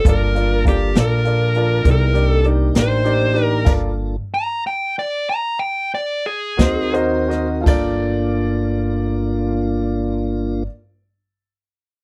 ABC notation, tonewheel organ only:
X:1
M:12/8
L:1/8
Q:3/8=61
K:Gm
V:1 name="Tonewheel organ"
[B,DFa]6 [=B,E=E_A] [_B,D_EG]4- [B,DEG] | [B,DFA]2 z6 z [CE_GB]3 | [B,DF]12 |]